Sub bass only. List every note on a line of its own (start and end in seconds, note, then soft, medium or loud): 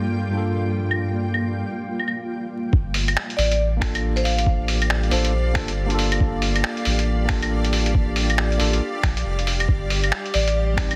2.73 3.15 G1 loud
3.38 5.11 A1 medium
5.12 5.35 A1 medium
5.33 5.57 A#1 loud
5.55 6.19 G1 loud
6.21 6.63 G1 loud
6.86 8.59 A1 medium
8.60 8.80 A1 medium
9.03 9.24 A#1 loud
9.26 9.68 F1 medium
9.69 10.11 G1 loud
10.34 10.96 A1 medium